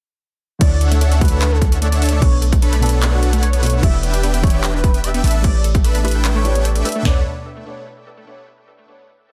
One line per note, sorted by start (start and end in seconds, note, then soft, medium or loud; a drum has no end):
0.59 2.20 D2 medium
0.59 1.18 D3 medium
0.59 1.18 A3 medium
0.59 0.65 A3 medium
0.59 0.99 D4 loud
0.59 1.19 E4 medium
0.59 1.19 F#4 medium
0.59 0.99 A4 medium
0.59 0.99 C#5 medium
0.59 1.20 C#5 medium
0.59 0.77 D5 loud
0.59 0.99 E5 medium
0.59 0.99 F#5 loud
0.59 kick loud
0.59 closed hi-hat medium
0.59 crash soft
0.71 0.75 A3 medium
0.81 0.85 A4 medium
0.81 closed hi-hat medium
0.91 0.94 A3 loud
0.91 closed hi-hat medium
1.01 1.04 A3 medium
1.01 1.19 D4 loud
1.01 1.19 A4 medium
1.01 1.19 C#5 medium
1.01 1.19 E5 medium
1.01 1.19 F#5 loud
1.01 closed hi-hat medium
1.12 1.16 C#4 medium
1.12 closed hi-hat medium
1.19 2.19 D3 medium
1.19 2.19 A3 medium
1.19 1.26 A3 medium
1.19 1.29 D4 medium
1.19 2.21 D4 medium
1.19 2.20 E4 medium
1.19 2.20 F#4 medium
1.19 1.29 A4 medium
1.19 1.53 B4 loud
1.19 1.29 C#5 medium
1.19 1.29 E5 medium
1.19 1.29 F#5 medium
1.19 kick loud
1.19 closed hi-hat medium
1.25 closed hi-hat medium
1.28 1.36 A3 medium
1.28 1.49 D4 loud
1.28 1.49 A4 medium
1.28 1.49 C#5 medium
1.28 1.49 E5 medium
1.28 1.49 F#5 loud
1.28 closed hi-hat medium
1.41 1.46 A4 medium
1.41 clap loud
1.41 closed hi-hat medium
1.52 1.54 A3 loud
1.52 1.99 D4 loud
1.52 1.68 A4 loud
1.52 1.99 A4 medium
1.52 1.99 C#5 medium
1.52 1.99 E5 medium
1.52 1.99 F#5 loud
1.62 1.64 A3 medium
1.62 kick loud
1.62 closed hi-hat medium
1.72 1.76 C#4 medium
1.72 closed hi-hat medium
1.82 1.86 A3 medium
1.82 1.93 D5 medium
1.82 closed hi-hat medium
1.92 1.96 A3 medium
1.92 closed hi-hat medium
2.02 2.21 D4 loud
2.02 2.06 A4 medium
2.02 2.21 A4 medium
2.02 2.21 C#5 medium
2.02 2.23 D5 medium
2.02 2.21 E5 medium
2.02 2.21 A5 loud
2.02 closed hi-hat medium
2.02 open hi-hat loud
2.09 2.15 A3 loud
2.09 closed hi-hat medium
2.20 3.81 B1 medium
2.20 2.79 B2 medium
2.20 2.25 A3 medium
2.20 2.80 B3 medium
2.20 2.80 D4 medium
2.20 2.81 A4 medium
2.20 2.81 B4 medium
2.20 2.38 C#5 loud
2.20 kick loud
2.20 closed hi-hat medium
2.20 crash soft
2.32 2.36 B3 medium
2.42 2.46 A3 medium
2.42 closed hi-hat medium
2.52 2.57 A3 medium
2.52 kick loud
2.52 closed hi-hat medium
2.62 2.76 D4 loud
2.62 2.66 A4 medium
2.62 2.76 A4 medium
2.62 2.76 B4 medium
2.62 2.76 C#5 medium
2.62 2.76 B5 loud
2.62 closed hi-hat medium
2.73 2.75 A3 loud
2.73 closed hi-hat medium
2.80 3.60 B2 loud
2.80 2.85 A3 medium
2.80 3.60 B3 loud
2.80 3.61 D4 medium
2.80 2.90 D4 medium
2.80 2.99 A4 loud
2.80 2.90 A4 medium
2.80 3.61 A4 medium
2.80 2.90 B4 medium
2.80 2.90 C#5 medium
2.80 3.62 D5 loud
2.80 2.90 B5 medium
2.80 closed hi-hat medium
2.86 closed hi-hat medium
2.89 2.97 B3 medium
2.89 3.00 D4 medium
2.89 3.00 A4 medium
2.89 3.00 B4 medium
2.89 3.00 C#5 medium
2.89 3.00 F#5 medium
2.89 closed hi-hat medium
3.02 3.07 A3 medium
3.02 3.31 D4 medium
3.02 3.31 A4 medium
3.02 3.31 B4 medium
3.02 3.31 C#5 medium
3.02 3.31 F#5 loud
3.02 clap loud
3.02 closed hi-hat medium
3.13 3.17 A3 medium
3.13 3.29 F#4 loud
3.23 3.27 A4 medium
3.23 closed hi-hat medium
3.33 3.35 A3 loud
3.33 3.81 D4 medium
3.33 3.81 A4 medium
3.33 3.81 B4 medium
3.33 3.81 C#5 medium
3.33 3.81 F#5 loud
3.33 closed hi-hat medium
3.42 3.45 A3 medium
3.42 3.54 C#5 medium
3.42 closed hi-hat medium
3.53 3.57 B3 medium
3.53 closed hi-hat medium
3.62 3.80 B2 medium
3.62 3.67 A3 medium
3.62 3.80 B3 medium
3.62 3.81 D4 medium
3.62 3.81 A4 medium
3.62 3.81 B4 loud
3.62 3.74 C#5 medium
3.62 open hi-hat medium
3.66 closed hi-hat medium
3.73 3.77 A3 medium
3.81 5.22 E1 medium
3.81 4.40 E3 medium
3.81 4.21 D4 loud
3.81 4.41 E4 medium
3.81 4.21 G4 medium
3.81 4.42 G4 medium
3.81 4.21 B4 medium
3.81 3.87 D5 medium
3.81 3.99 E5 loud
3.81 kick loud
3.81 closed hi-hat medium
3.81 crash soft
3.85 4.42 D5 medium
3.93 3.96 B3 loud
4.03 4.06 B3 medium
4.03 closed hi-hat medium
4.14 4.18 D4 medium
4.14 closed hi-hat medium
4.23 4.28 B3 medium
4.23 4.41 D4 loud
4.23 4.41 G4 medium
4.23 4.41 B4 medium
4.23 4.41 E5 medium
4.23 4.41 G5 loud
4.23 closed hi-hat medium
4.34 4.38 B3 medium
4.34 closed hi-hat medium
4.42 5.22 E3 medium
4.42 5.22 E4 medium
4.42 4.51 G4 medium
4.42 5.23 G4 medium
4.42 4.60 C#5 medium
4.42 4.48 D5 medium
4.42 5.24 E5 medium
4.42 kick loud
4.42 closed hi-hat soft
4.47 closed hi-hat medium
4.50 4.56 B3 loud
4.50 4.72 D4 loud
4.50 4.72 G4 medium
4.50 4.72 B4 medium
4.50 4.72 E5 medium
4.50 4.72 G5 loud
4.50 closed hi-hat medium
4.64 4.66 B3 medium
4.64 clap loud
4.64 closed hi-hat medium
4.74 4.78 D4 medium
4.74 5.22 D4 loud
4.74 5.22 G4 medium
4.74 5.22 B4 medium
4.74 5.05 B4 loud
4.74 5.22 E5 medium
4.74 5.22 G5 loud
4.84 4.88 B3 medium
4.84 kick loud
4.84 closed hi-hat medium
4.94 4.98 B3 medium
4.94 closed hi-hat medium
5.04 5.08 D5 medium
5.04 5.15 E5 medium
5.04 closed hi-hat medium
5.14 5.17 B3 loud
5.14 closed hi-hat medium
5.24 6.83 A1 medium
5.24 5.27 A3 medium
5.24 5.45 D4 loud
5.24 5.45 A4 medium
5.24 5.45 B4 medium
5.24 5.45 E5 medium
5.24 5.35 E5 medium
5.24 5.45 A5 loud
5.24 closed hi-hat medium
5.24 open hi-hat medium
5.31 5.39 B3 medium
5.31 closed hi-hat medium
5.42 6.01 A3 medium
5.42 5.48 A3 medium
5.42 6.02 E4 medium
5.42 6.02 G4 medium
5.42 6.03 B4 medium
5.42 5.61 D5 loud
5.42 kick loud
5.42 closed hi-hat medium
5.42 crash soft
5.46 6.03 C#5 medium
5.55 5.59 A3 medium
5.64 5.69 A4 medium
5.64 closed hi-hat medium
5.75 5.77 A3 loud
5.75 kick loud
5.75 closed hi-hat medium
5.84 5.87 A3 medium
5.84 5.98 D4 medium
5.84 5.98 A4 medium
5.84 5.98 B4 medium
5.84 5.98 E5 medium
5.84 5.98 B5 loud
5.84 closed hi-hat medium
5.95 5.99 B3 medium
5.95 closed hi-hat medium
6.03 6.42 A3 loud
6.03 6.09 A3 medium
6.03 6.13 D4 medium
6.03 6.43 E4 medium
6.03 6.43 G4 medium
6.03 6.13 A4 medium
6.03 6.21 B4 loud
6.03 6.13 B4 medium
6.03 6.43 B4 medium
6.03 6.13 E5 medium
6.03 6.43 E5 loud
6.03 6.13 B5 medium
6.03 closed hi-hat soft
6.08 closed hi-hat medium
6.11 6.19 A3 medium
6.11 6.22 D4 medium
6.11 6.22 A4 medium
6.11 6.22 B4 medium
6.11 6.22 E5 medium
6.11 6.22 G5 medium
6.11 closed hi-hat medium
6.25 6.53 D4 medium
6.25 6.29 A4 medium
6.25 6.53 A4 medium
6.25 6.53 B4 medium
6.25 6.53 E5 medium
6.25 6.53 G5 loud
6.25 clap loud
6.25 closed hi-hat medium
6.35 6.37 A3 loud
6.35 6.67 C#5 loud
6.44 6.82 A3 medium
6.44 6.47 A3 medium
6.44 6.83 E4 medium
6.44 6.83 G4 medium
6.44 6.83 B4 medium
6.44 6.83 D5 medium
6.44 closed hi-hat medium
6.55 6.59 B3 medium
6.55 7.03 D4 medium
6.55 7.03 A4 medium
6.55 7.03 B4 medium
6.55 7.03 E5 medium
6.55 7.03 G5 loud
6.55 closed hi-hat medium
6.65 6.69 A3 medium
6.65 6.76 D5 medium
6.65 closed hi-hat medium
6.75 6.79 A3 medium
6.75 closed hi-hat medium
6.84 7.02 A3 medium
6.84 7.03 E4 medium
6.84 7.03 G4 medium
6.84 6.89 A4 medium
6.84 7.03 B4 medium
6.84 7.03 D5 medium
6.84 6.96 E5 medium
6.84 open hi-hat medium
6.89 closed hi-hat medium
6.92 6.98 A3 loud
6.92 closed hi-hat medium
7.02 7.24 B1 loud
7.02 7.19 B2 medium
7.02 7.24 A3 medium
7.02 7.19 B3 medium
7.02 7.20 D4 medium
7.02 7.20 B4 medium
7.02 7.20 C#5 medium
7.02 7.20 D5 loud
7.02 7.20 F#5 medium
7.02 snare loud
7.02 floor tom loud
7.07 7.21 A4 medium
7.07 7.22 C#5 loud